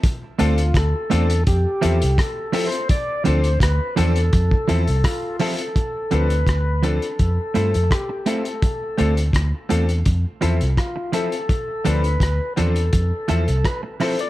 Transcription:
<<
  \new Staff \with { instrumentName = "Tonewheel organ" } { \time 4/4 \key d \dorian \tempo 4 = 84 r8 f'8 a'4 g'4 \tuplet 3/2 { a'4 c''8 } | d''8 c''8 b'8 a'4. f'8 a'8~ | a'8 b'4 a'4. g'8 f'16 a'16~ | a'8. r2 r16 f'8 a'8~ |
a'8 b'4 a'4. b'8 c''16 d''16 | }
  \new Staff \with { instrumentName = "Upright piano" } { \time 4/4 \key d \dorian r8 <c' d' f' a'>16 r8. <c' d' f' a'>16 r8. <c' e' f' a'>16 <f' a'>16 r8 <c' e' f' a'>16 <f' a'>16 | r8 <c' d' f' a'>16 r8. <c' d' f' a'>16 r8. <c' e' f' a'>16 <f' a'>16 r8 <c' e' f' a'>16 r16 | r8 <c' d' f' a'>16 r8. <c' d' f' a'>16 r8. <c' e' f' a'>16 <f' a'>16 r8 <c' e' f' a'>16 <f' a'>16 | r8 <c' d' f' a'>16 r8. <c' d' f' a'>16 r8. <c' e' f' a'>16 <f' a'>16 r8 <c' e' f' a'>16 r16 |
r8 <c' d' f' a'>16 r8. <c' d' f' a'>16 r8. <c' e' f' a'>16 <f' a'>16 r8 <c' e' f' a'>16 <f' a'>16 | }
  \new Staff \with { instrumentName = "Clean electric guitar" } { \time 4/4 \key d \dorian r8 <a c' f' a'>8 r8 <a c' f' a'>8 r8 <f c' e' a'>8 r8 <f c' e' a'>8 | r8 <f c' d' a'>8 r8 <f c' d' a'>8 r8 <f c' e' a'>8 r8 <f c' e' a'>8 | r8 <f c' d' a'>8 r8 <f c' d' a'>8 r8 <a c' e' a'>8 r8 <a c' e' a'>8 | r8 <a c' f' a'>8 r8 <a c' f' a'>8 r8 <f c' e' a'>8 r8 <f c' e' a'>8 |
r8 <f c' d' a'>8 r8 <f c' d' a'>8 r8 <f c' e' a'>8 r8 <f c' e' a'>8 | }
  \new Staff \with { instrumentName = "Fingered electric bass" } { \clef bass \time 4/4 \key d \dorian r8 d,8 d,16 r16 e,8 f,16 r16 e,16 c,16 r4 | r8 d,8 d,16 r16 e,8 f,16 r16 e,16 c,16 r4 | r8 d,8 d,8. r16 f,16 r16 g,16 f,16 r4 | r8 d,8 d,16 r16 e,8 f,16 r16 e,16 c,16 r4 |
r8 d,8 d,16 r16 e,8 f,16 r16 e,16 c,16 r4 | }
  \new DrumStaff \with { instrumentName = "Drums" } \drummode { \time 4/4 <hh bd>8 hh16 hh16 <hh bd ss>8 hh16 hh16 <hh bd>8 hh16 hh16 <hh bd ss>8 hho16 hh16 | <hh bd>8 hh16 hh16 <hh bd ss>8 hh16 hh16 <hh bd>16 bd16 hh16 hh16 <hh bd ss>8 hho16 hh16 | <hh bd>8 hh16 hh16 <hh bd ss>8 hh16 hh16 <hh bd>8 hh16 hh16 <hh bd ss>8 hh16 hh16 | <hh bd>8 hh16 hh16 <hh bd ss>8 hh16 hh16 <hh bd>8 hh16 hh16 <hh bd ss>8 hh16 hh16 |
<hh bd>8 hh16 hh16 <hh bd ss>8 hh16 hh16 <hh bd>8 hh16 hh16 <hh bd ss>8 <hho ss>16 hh16 | }
>>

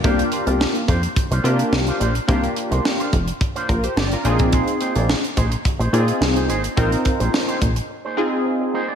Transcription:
<<
  \new Staff \with { instrumentName = "Analog polysynth" } { \time 4/4 \key c \minor \tempo 4 = 107 << { r1 | r2 r8 <f' bes'>16 <g' c''>16 <g' d''>16 <f' bes'>8 r16 | r1 | r1 | } \\ { <bes d' f' g'>4. r4 <bes d' f' g'>4 r8 | <bes d' f' g'>4. r2 <c' d' ees' f' aes'>8~ | <c' d' ees' f' aes'>4 r4. <c' ees' f' aes'>4 r8 | <c' ees' f' bes'>4. r4 <c' ees' f' aes'>4 r8 | } >> }
  \new Staff \with { instrumentName = "Clean electric guitar" } { \time 4/4 \key c \minor <bes d' f' c''>16 r16 <bes d' f' c''>16 <bes d' f' d''>16 r8 <bes d' f' c''>16 r8 <bes d' f' c''>16 <bes d' f' d''>16 r8 <bes d' f' c''>16 <bes d' f' c''>16 r16 | <bes d' f' c''>16 r8 <bes d' f' c''>16 r16 <bes d' f' c''>16 r8. <bes d' f' c''>16 r4 <bes ees' aes' c''>16 <bes ees' aes' d''>16 | <bes ees' aes' c''>16 r16 <bes ees' aes' c''>16 <bes ees' aes' d''>16 r8 <bes ees' aes' c''>16 r8 <bes ees' aes' c''>16 <bes ees' aes' d''>16 r8 <bes ees' aes' c''>16 <bes ees' aes' c''>16 r16 | <bes ees' aes' c''>16 r8 <bes ees' aes' c''>16 r16 <bes ees' aes' c''>16 r8. <bes ees' aes' c''>16 r4 <bes ees' aes' c''>16 <bes ees' aes' d''>16 | }
  \new Staff \with { instrumentName = "Analog synth bass" } { \clef bass \time 4/4 \key c \minor c,8 r16 c,8 r16 f,8 r16 c,16 c8 c,8 bes,,8 | c,8 r16 c,16 r8 f,,8 r8 bes,,8 g,,8 bes,,8~ | bes,,8 r16 bes,,8 r16 bes,,8 r16 bes,,16 bes,8 c,8 aes,,8 | bes,,8 r16 bes,,16 r8 bes,,8 r2 | }
  \new DrumStaff \with { instrumentName = "Drums" } \drummode { \time 4/4 <hh bd>16 hh16 hh16 hh16 sn16 hh16 <hh bd>16 hh16 <hh bd>16 hh16 hh16 hh16 sn16 hh16 hh16 hh16 | <hh bd>16 hh16 hh16 hh16 sn16 hh16 <hh bd>16 hh16 <hh bd>16 hh16 <hh bd>16 hh16 sn16 hh16 hh16 <hh bd>16 | <hh bd>16 hh16 hh16 hh16 sn16 hh16 <hh bd>16 hh16 <hh bd>16 hh16 hh16 hh16 sn16 hh16 hh16 hh16 | <hh bd>16 hh16 <hh bd>16 hh16 sn16 hh16 <hh bd>16 hh16 r4 r4 | }
>>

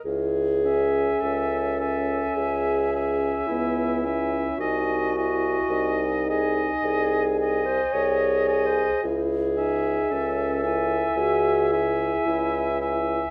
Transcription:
<<
  \new Staff \with { instrumentName = "Flute" } { \time 4/4 \key cis \minor \tempo 4 = 54 r8 gis''4 gis''4 gis''4 gis''8 | gis''8 gis''4 gis''4 gis''4 gis''8 | r8 gis''4 gis''4 gis''4 gis''8 | }
  \new Staff \with { instrumentName = "Oboe" } { \time 4/4 \key cis \minor r8 e''4 e''4 e''4 e''8 | dis''8 dis''4 dis''4 dis''4 dis''8 | r8 e''4 e''4 e''4 e''8 | }
  \new Staff \with { instrumentName = "Clarinet" } { \time 4/4 \key cis \minor gis'4 a'4 gis'4 e'4 | fis'4. gis'16 r16 gis'8. bis'16 \tuplet 3/2 { cis''4 bis'8 } | gis'4 a'4 gis'4 e'8. r16 | }
  \new Staff \with { instrumentName = "French horn" } { \time 4/4 \key cis \minor e'8 cis'2~ cis'8 b8 cis'8 | dis'8 e'8 dis'4.~ dis'16 r16 gis'4 | e'8 dis'8 cis'8 e'8 fis'8 e'4. | }
  \new Staff \with { instrumentName = "Bassoon" } { \clef bass \time 4/4 \key cis \minor cis,4 cis,4 cis,4 cis,4 | bis,,4 bis,,4 bis,,4 bis,,4 | cis,4 cis,4 cis,4 cis,4 | }
>>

